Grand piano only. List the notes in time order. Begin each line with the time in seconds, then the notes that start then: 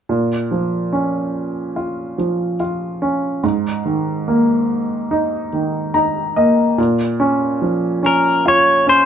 0.09 A#2
0.51 F3
0.93 C#4
1.76 F4
2.18 F3
2.60 F4
3.02 C#4
3.43 G#2
3.85 D#3
4.28 A#3
5.11 D#4
5.53 D#3
5.94 D#4 A#5
6.36 A#3 D#5
6.78 A#2
7.20 C#4
7.62 F3
8.03 C#4
8.46 F4
8.87 C#4